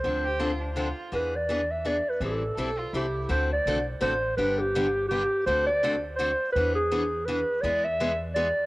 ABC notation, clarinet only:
X:1
M:3/4
L:1/8
Q:"Swing" 1/4=166
K:Ddor
V:1 name="Clarinet"
c3 z3 | B d2 e d B | A4 G2 | c d2 z c2 |
B G3 G2 | c d2 z c2 | B ^G3 B2 | d e2 z d2 |]